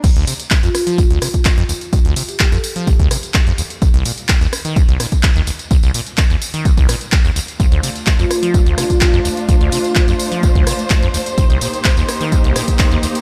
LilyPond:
<<
  \new Staff \with { instrumentName = "Marimba" } { \time 4/4 \key d \phrygian \tempo 4 = 127 r4 r16 f'16 f'16 r2 r16 | r8. g'16 g'16 a'8. r2 | r1 | r1 |
r4 r16 f'16 f'16 r8. f'16 f'16 f'16 r8. | r8 f'16 f'16 r2. | r1 | }
  \new Staff \with { instrumentName = "String section" } { \time 4/4 \key d \phrygian << { r1 | r1 | r1 | r1 |
c''1~ | c''1~ | c''1 | } \\ { r1 | r1 | r1 | r1 |
<a d' f'>1~ | <a d' f'>1 | <bes ees' g'>1 | } >> }
  \new Staff \with { instrumentName = "Acid bass" } { \clef bass \time 4/4 \key d \phrygian d,16 d,16 c16 r8 f,16 r16 f16 d,,16 d,16 c16 r8 f,16 ees,16 r16 | d,16 d,16 c16 r8 f,16 r16 f16 d,,16 d,16 c16 r8 f,16 ees,16 r16 | c,16 c,16 bes,16 r8 ees,16 r16 ees16 c,16 c,16 bes,16 r8 ees,16 d,16 r16 | c,16 c,16 bes,16 r8 ees,16 r16 ees16 c,16 c,16 bes,16 r8 ees,16 d,16 r16 |
d,16 d,16 c16 r8 f,16 r16 f16 d,,16 d,16 c16 r8 f,16 ees,16 r16 | d,16 d,16 c16 r8 f,16 r16 f16 d,,16 d,16 c16 r8 f,16 ees,16 r16 | c,16 c,16 bes,16 r8 ees,16 r16 ees16 c,16 c,16 bes,16 r8 ees,16 d,16 r16 | }
  \new DrumStaff \with { instrumentName = "Drums" } \drummode { \time 4/4 <cymc hh bd tamb>16 hh16 <hho tamb>16 <hh tamb>16 <hc hh bd tamb>16 <hh tamb>16 <hho ss tamb>16 <hh tamb>16 <hh bd tamb>16 hh16 <hho ss tamb>16 <hh bd tamb>16 <hc hh bd tamb>16 hh16 <hho tamb>16 <hh tamb>16 | <hh bd tamb>16 hh16 <hho tamb>16 <hh tamb>16 <hc hh bd tamb>16 <hh tamb>16 <hho tamb>16 <hh tamb>16 <hh bd tamb>16 <hh bd>16 <hho ss tamb>16 <hh tamb>16 <hc hh bd tamb>16 hh16 <hho tamb>16 <hh tamb>16 | <hh bd tamb>16 hh16 <hho tamb>16 <hh tamb>16 <hc hh bd tamb>16 <hh tamb>16 <hho ss tamb>16 <hh tamb>16 <hh bd tamb>16 hh16 <hho ss tamb>16 <hh bd tamb>16 <hc hh bd tamb>16 hh16 <hho tamb>16 <hh tamb>16 | <hh bd tamb>16 <hh tamb>16 <hho tamb>16 <hh tamb>16 <hc hh bd tamb>16 <hh tamb>16 <hho tamb>16 <hh tamb>16 <hh bd tamb>16 <hh bd tamb>16 <hho ss tamb>16 <hh tamb>16 <hc hh bd tamb>16 <hh tamb>16 <hho tamb>16 <hh tamb>16 |
<hh bd tamb>16 hh16 <hho tamb>16 <hh tamb>16 <hc hh bd tamb>16 <hh tamb>16 <hho ss tamb>16 <hh tamb>16 <hh bd tamb>16 hh16 <hho ss tamb>16 <hh bd tamb>16 <hc hh bd tamb>16 hh16 <hho tamb>16 <hh tamb>16 | <hh bd tamb>16 hh16 <hho tamb>16 <hh tamb>16 <hc hh bd tamb>16 <hh tamb>16 <hho tamb>16 <hh tamb>16 <hh bd tamb>16 <hh bd>16 <hho ss tamb>16 <hh tamb>16 <hc hh bd tamb>16 hh16 <hho tamb>16 <hh tamb>16 | <hh bd tamb>16 hh16 <hho tamb>16 <hh tamb>16 <hc hh bd tamb>16 <hh tamb>16 <hho ss tamb>16 <hh tamb>16 <hh bd tamb>16 hh16 <hho ss tamb>16 <hh bd tamb>16 <hc hh bd tamb>16 hh16 <hho tamb>16 <hh tamb>16 | }
>>